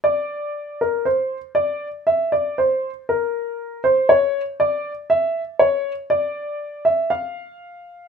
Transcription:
X:1
M:4/4
L:1/16
Q:1/4=59
K:Dm
V:1 name="Grand piano"
d3 B c2 d2 e d c2 B3 c | ^c2 d2 e2 c2 d3 e f4 |]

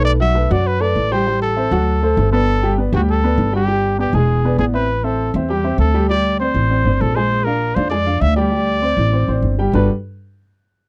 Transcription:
X:1
M:4/4
L:1/8
Q:1/4=198
K:G
V:1 name="Trumpet"
d e2 d B d2 c- | c A6 A- | A2 z F A3 G- | G2 G _A3 ^G B- |
B A2 z G2 A2 | d2 c4 A c- | c _B2 c d2 e d- | d6- d z |
B z6 z |]
V:2 name="Upright piano"
[A,AB] [F,Ff] [A,AB] [F,Ff]2 [A,AB]2 [G,Gg] | [G,G]2 [Cce] [F,Ff]2 [A,Ac] [A,Ac] [B,Bd]- | [B,Bd] [G,Gg] [B,Bd] [G,Gg]2 [B,Bd]2 [G,Gg] | [G,Gg]2 [B,Bd] [_A,_A_a]2 [B,Bd] [B,Bd] [Cce] |
z [Cce]2 [Cce] [G,Gg] [Cce]2 [G,Gg] | [G,Gg]2 [Ccd]2 [Ccd] [Ccd]2 [_A,_A_a]- | [_A,_A_a] [Dd=f]2 [Ddf] [A,Aa] [Ddf]2 [G,Gg] | [G,Gg]2 [Ccd]2 [Ccd] [Ccd]2 [G,Gg] |
[G,DFGAB] z6 z |]
V:3 name="Upright bass" clef=bass
B,,,3 F,,3 A,,,2- | A,,,3 D,,3 G,,,2- | G,,,3 D,,3 G,,,2- | G,,,3 E,,,3 A,,,2- |
A,,,3 E,,3 D,,2- | D,,3 A,,,2 G,,, _B,,,2- | _B,,,3 =F,,3 D,,2- | D,,3 A,,,2 A,,, G,,,2 |
G,,, z6 z |]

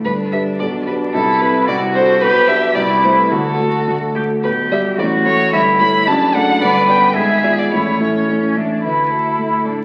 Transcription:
X:1
M:2/4
L:1/16
Q:1/4=110
K:G
V:1 name="Violin"
B2 e2 d2 B2 | A2 B2 d2 c2 | B2 e2 d2 c B | A6 z2 |
[K:D] B2 e2 d2 c2 | e2 b2 a2 f2 | d2 g2 e3 d | c4 z4 |
B2 A6 |]
V:2 name="Cello"
D8 | E4 F4 | G4 E4 | F4 F2 G2 |
[K:D] G4 F4 | E4 D4 | B4 ^G4 | E2 C4 D2 |
E6 D2 |]
V:3 name="Grand piano"
[G,,,G,,]2 [DGB]2 [B,,,B,,]2 [DGB]2 | [C,,C,]2 [CEA]2 [C,,C,]2 [DFA]2 | [B,,,B,,]2 [DGB]2 [C,,C,]2 [A,EA]2 | [D,,D,]2 [A,FA]2 [D,,D,]2 [A,FA]2 |
[K:D] [B,,,B,,]2 [G,Gd]2 [A,,,A,,]2 [A,Ec]2 | [G,,,G,,]2 [A,Ec]2 [F,,,F,,]2 [A,Dd]2 | [G,,,G,,]2 [B,Dd]2 [^G,,,^G,,]2 [B,^Ed]2 | [A,,,A,,]2 [A,Ee]2 [A,,,A,,]2 [A,Ee]2 |
D,,2 F2 A,2 A,,2 |]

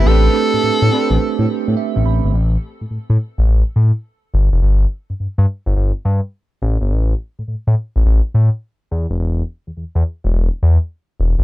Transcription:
X:1
M:4/4
L:1/16
Q:"Swing 16ths" 1/4=105
K:Am
V:1 name="Tenor saxophone"
A12 z4 | z16 | z16 | z16 |
z16 |]
V:2 name="String section"
[CDGB]2 z4 [CDGB] z8 z | z16 | z16 | z16 |
z16 |]
V:3 name="Tine electric piano"
[A,CDGB]2 [A,CDGB]6- [A,CDGB] z3 e2 b2 | z16 | z16 | z16 |
z16 |]
V:4 name="Analog synth pad"
[A,CG]16 | z16 | z16 | z16 |
z16 |]
V:5 name="Analog synth bass" clef=bass
A,,,2 z A,, A,, A,, z A,,, z A,, z A,, z A,,, A,,, G,,, | A,,,2 z A,, A,, A,, z A,,, A,,, z A,, z3 G,,, F,,, | G,,,2 z G,, G,, G,, z G,,, G,,, z G,, z3 A,,, G,,, | A,,,2 z A,, A,, A,, z A,,, A,,, z A,, z3 E,, F,,, |
E,,,2 z E,, E,, E,, z E,,, E,,, z E,, z3 E,,, G,,, |]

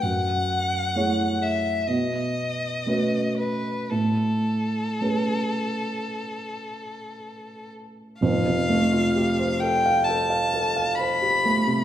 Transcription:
X:1
M:4/4
L:1/16
Q:1/4=64
K:Alyd
V:1 name="Violin"
f6 e2 d6 B2 | A12- A2 z2 | [K:Flyd] f6 g2 a4 b4 |]
V:2 name="Grand piano"
F,,4 [A,EGc]4 B,,4 [A,CFB]4 | A,,4 [A,CGB]12 | [K:Flyd] [F,,,F,,] C, A, F G c A f A f A f c G A, C, |]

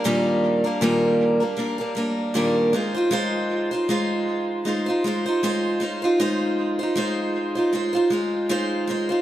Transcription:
X:1
M:4/4
L:1/16
Q:"Swing 16ths" 1/4=78
K:Ablyd
V:1 name="Steel-string acoustic guitar"
[B,,E,G,B,DB]3 [G,B,DB] [B,,E,G,B,DB]3 [G,B,DB] [G,B,DB] [G,B,DB] [G,B,DB]2 [B,,E,G,B,DB]2 [A,EFc] [EFc] | [A,EFc]3 [EFc] [A,EFc]4 [A,EFc] [EFc] [A,EFc] [EFc] [A,EFc]2 [A,EFc] [EFc] | [A,EFc]3 [EFc] [A,EFc]3 [EFc] [A,EFc] [EFc] [A,EFc]2 [A,EFc]2 [A,EFc] [EFc] |]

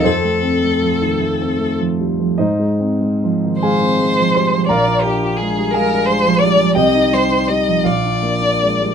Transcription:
X:1
M:6/8
L:1/16
Q:3/8=54
K:Fmix
V:1 name="Violin"
A8- A z3 | [K:Bbmix] z6 c6 | d2 G2 A2 B2 c2 d2 | e2 c2 e2 d6 |]
V:2 name="Grand piano"
[CAc]8- [CAc]2 z2 | [K:Bbmix] [Ece]6 [Afa]4 [cc']2 | [Bfb]6 [Afa]6 | [Geg]6 [Fdf]6 |]
V:3 name="Grand piano" clef=bass
F,, A, C A, F, E, A, C A, F, G, F, | [K:Bbmix] A,, A, C A, F, E, A, C A, F, G, F, | B,,, F D F A, G, A, D A, F, G, F, | C,, E G, E G, F, B,,, D B, D A, G, |]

